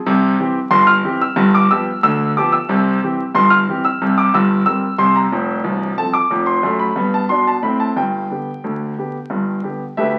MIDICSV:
0, 0, Header, 1, 2, 480
1, 0, Start_track
1, 0, Key_signature, 0, "major"
1, 0, Tempo, 657895
1, 43, Time_signature, 2, 2, 24, 8
1, 4843, Tempo, 667408
1, 7396, End_track
2, 0, Start_track
2, 0, Title_t, "Grand piano"
2, 0, Program_c, 0, 0
2, 46, Note_on_c, 0, 36, 95
2, 46, Note_on_c, 0, 48, 112
2, 249, Note_off_c, 0, 36, 0
2, 249, Note_off_c, 0, 48, 0
2, 287, Note_on_c, 0, 52, 62
2, 288, Note_on_c, 0, 60, 65
2, 293, Note_on_c, 0, 67, 65
2, 418, Note_off_c, 0, 52, 0
2, 419, Note_off_c, 0, 60, 0
2, 422, Note_off_c, 0, 67, 0
2, 515, Note_on_c, 0, 84, 123
2, 516, Note_on_c, 0, 31, 96
2, 516, Note_on_c, 0, 43, 99
2, 634, Note_on_c, 0, 89, 117
2, 639, Note_off_c, 0, 84, 0
2, 723, Note_off_c, 0, 31, 0
2, 723, Note_off_c, 0, 43, 0
2, 760, Note_on_c, 0, 52, 62
2, 761, Note_on_c, 0, 60, 63
2, 767, Note_on_c, 0, 67, 68
2, 866, Note_off_c, 0, 89, 0
2, 887, Note_on_c, 0, 88, 96
2, 893, Note_off_c, 0, 52, 0
2, 893, Note_off_c, 0, 60, 0
2, 898, Note_off_c, 0, 67, 0
2, 993, Note_on_c, 0, 43, 104
2, 995, Note_on_c, 0, 31, 95
2, 1077, Note_off_c, 0, 88, 0
2, 1127, Note_on_c, 0, 86, 107
2, 1201, Note_off_c, 0, 43, 0
2, 1202, Note_off_c, 0, 31, 0
2, 1245, Note_off_c, 0, 86, 0
2, 1245, Note_on_c, 0, 88, 115
2, 1246, Note_on_c, 0, 53, 59
2, 1248, Note_on_c, 0, 59, 59
2, 1250, Note_on_c, 0, 67, 59
2, 1377, Note_off_c, 0, 53, 0
2, 1379, Note_off_c, 0, 59, 0
2, 1380, Note_off_c, 0, 67, 0
2, 1436, Note_off_c, 0, 88, 0
2, 1482, Note_on_c, 0, 38, 90
2, 1483, Note_on_c, 0, 88, 125
2, 1484, Note_on_c, 0, 50, 92
2, 1675, Note_off_c, 0, 88, 0
2, 1686, Note_off_c, 0, 38, 0
2, 1687, Note_off_c, 0, 50, 0
2, 1729, Note_on_c, 0, 86, 92
2, 1731, Note_on_c, 0, 53, 65
2, 1735, Note_on_c, 0, 59, 63
2, 1736, Note_on_c, 0, 67, 67
2, 1841, Note_on_c, 0, 88, 96
2, 1846, Note_off_c, 0, 86, 0
2, 1860, Note_off_c, 0, 53, 0
2, 1863, Note_off_c, 0, 59, 0
2, 1864, Note_off_c, 0, 67, 0
2, 1961, Note_on_c, 0, 36, 98
2, 1962, Note_off_c, 0, 88, 0
2, 1966, Note_on_c, 0, 48, 100
2, 2165, Note_off_c, 0, 36, 0
2, 2168, Note_off_c, 0, 48, 0
2, 2212, Note_on_c, 0, 52, 54
2, 2213, Note_on_c, 0, 60, 55
2, 2217, Note_on_c, 0, 67, 61
2, 2341, Note_off_c, 0, 52, 0
2, 2342, Note_off_c, 0, 60, 0
2, 2344, Note_off_c, 0, 67, 0
2, 2441, Note_on_c, 0, 43, 86
2, 2443, Note_on_c, 0, 31, 84
2, 2444, Note_on_c, 0, 84, 110
2, 2556, Note_on_c, 0, 89, 113
2, 2563, Note_off_c, 0, 84, 0
2, 2645, Note_off_c, 0, 43, 0
2, 2646, Note_off_c, 0, 31, 0
2, 2687, Note_on_c, 0, 52, 56
2, 2693, Note_on_c, 0, 60, 57
2, 2698, Note_on_c, 0, 67, 56
2, 2786, Note_off_c, 0, 89, 0
2, 2806, Note_on_c, 0, 88, 97
2, 2817, Note_off_c, 0, 52, 0
2, 2822, Note_off_c, 0, 60, 0
2, 2825, Note_off_c, 0, 67, 0
2, 2929, Note_on_c, 0, 36, 86
2, 2929, Note_on_c, 0, 48, 90
2, 2996, Note_off_c, 0, 88, 0
2, 3047, Note_on_c, 0, 86, 95
2, 3117, Note_off_c, 0, 36, 0
2, 3117, Note_off_c, 0, 48, 0
2, 3164, Note_off_c, 0, 86, 0
2, 3167, Note_on_c, 0, 43, 90
2, 3169, Note_on_c, 0, 31, 83
2, 3170, Note_on_c, 0, 88, 108
2, 3356, Note_off_c, 0, 43, 0
2, 3358, Note_off_c, 0, 31, 0
2, 3388, Note_off_c, 0, 88, 0
2, 3399, Note_on_c, 0, 88, 108
2, 3402, Note_on_c, 0, 55, 55
2, 3402, Note_on_c, 0, 70, 54
2, 3404, Note_on_c, 0, 60, 54
2, 3534, Note_off_c, 0, 55, 0
2, 3534, Note_off_c, 0, 70, 0
2, 3535, Note_off_c, 0, 60, 0
2, 3628, Note_off_c, 0, 88, 0
2, 3635, Note_on_c, 0, 36, 85
2, 3637, Note_on_c, 0, 48, 83
2, 3637, Note_on_c, 0, 84, 97
2, 3759, Note_off_c, 0, 84, 0
2, 3762, Note_on_c, 0, 82, 83
2, 3829, Note_off_c, 0, 36, 0
2, 3831, Note_off_c, 0, 48, 0
2, 3881, Note_off_c, 0, 82, 0
2, 3884, Note_on_c, 0, 29, 83
2, 3885, Note_on_c, 0, 41, 81
2, 4075, Note_off_c, 0, 29, 0
2, 4076, Note_off_c, 0, 41, 0
2, 4114, Note_on_c, 0, 24, 82
2, 4115, Note_on_c, 0, 36, 83
2, 4309, Note_off_c, 0, 24, 0
2, 4309, Note_off_c, 0, 36, 0
2, 4362, Note_on_c, 0, 53, 52
2, 4363, Note_on_c, 0, 81, 98
2, 4364, Note_on_c, 0, 60, 48
2, 4366, Note_on_c, 0, 69, 50
2, 4476, Note_on_c, 0, 86, 94
2, 4481, Note_off_c, 0, 81, 0
2, 4493, Note_off_c, 0, 53, 0
2, 4495, Note_off_c, 0, 60, 0
2, 4497, Note_off_c, 0, 69, 0
2, 4600, Note_on_c, 0, 41, 78
2, 4601, Note_on_c, 0, 29, 71
2, 4706, Note_off_c, 0, 86, 0
2, 4715, Note_on_c, 0, 84, 81
2, 4793, Note_off_c, 0, 29, 0
2, 4793, Note_off_c, 0, 41, 0
2, 4838, Note_on_c, 0, 42, 77
2, 4854, Note_on_c, 0, 57, 76
2, 4909, Note_off_c, 0, 84, 0
2, 4955, Note_on_c, 0, 83, 79
2, 5030, Note_off_c, 0, 42, 0
2, 5039, Note_off_c, 0, 57, 0
2, 5073, Note_on_c, 0, 43, 71
2, 5083, Note_on_c, 0, 59, 72
2, 5184, Note_off_c, 0, 83, 0
2, 5204, Note_on_c, 0, 81, 81
2, 5267, Note_off_c, 0, 43, 0
2, 5273, Note_off_c, 0, 59, 0
2, 5313, Note_on_c, 0, 84, 88
2, 5317, Note_on_c, 0, 47, 69
2, 5321, Note_off_c, 0, 81, 0
2, 5327, Note_on_c, 0, 62, 69
2, 5436, Note_off_c, 0, 84, 0
2, 5444, Note_on_c, 0, 81, 77
2, 5509, Note_off_c, 0, 47, 0
2, 5515, Note_off_c, 0, 62, 0
2, 5554, Note_on_c, 0, 45, 69
2, 5555, Note_on_c, 0, 83, 82
2, 5561, Note_off_c, 0, 81, 0
2, 5570, Note_on_c, 0, 60, 64
2, 5676, Note_off_c, 0, 83, 0
2, 5678, Note_on_c, 0, 81, 76
2, 5747, Note_off_c, 0, 45, 0
2, 5757, Note_off_c, 0, 60, 0
2, 5796, Note_on_c, 0, 31, 63
2, 5796, Note_on_c, 0, 43, 70
2, 5798, Note_off_c, 0, 81, 0
2, 5799, Note_on_c, 0, 79, 73
2, 6001, Note_off_c, 0, 31, 0
2, 6002, Note_off_c, 0, 43, 0
2, 6041, Note_on_c, 0, 50, 39
2, 6046, Note_on_c, 0, 59, 38
2, 6050, Note_on_c, 0, 67, 40
2, 6173, Note_off_c, 0, 50, 0
2, 6177, Note_off_c, 0, 59, 0
2, 6179, Note_off_c, 0, 67, 0
2, 6283, Note_on_c, 0, 38, 59
2, 6284, Note_on_c, 0, 50, 64
2, 6486, Note_off_c, 0, 38, 0
2, 6486, Note_off_c, 0, 50, 0
2, 6525, Note_on_c, 0, 50, 39
2, 6530, Note_on_c, 0, 59, 37
2, 6534, Note_on_c, 0, 67, 46
2, 6656, Note_off_c, 0, 50, 0
2, 6659, Note_off_c, 0, 59, 0
2, 6662, Note_off_c, 0, 67, 0
2, 6756, Note_on_c, 0, 31, 61
2, 6757, Note_on_c, 0, 43, 68
2, 6962, Note_off_c, 0, 31, 0
2, 6962, Note_off_c, 0, 43, 0
2, 6996, Note_on_c, 0, 50, 38
2, 6999, Note_on_c, 0, 59, 39
2, 7003, Note_on_c, 0, 67, 45
2, 7129, Note_off_c, 0, 50, 0
2, 7131, Note_off_c, 0, 59, 0
2, 7134, Note_off_c, 0, 67, 0
2, 7212, Note_off_c, 0, 79, 0
2, 7241, Note_on_c, 0, 76, 83
2, 7243, Note_on_c, 0, 38, 61
2, 7244, Note_on_c, 0, 50, 63
2, 7251, Note_on_c, 0, 67, 64
2, 7251, Note_on_c, 0, 71, 60
2, 7396, Note_off_c, 0, 38, 0
2, 7396, Note_off_c, 0, 50, 0
2, 7396, Note_off_c, 0, 67, 0
2, 7396, Note_off_c, 0, 71, 0
2, 7396, Note_off_c, 0, 76, 0
2, 7396, End_track
0, 0, End_of_file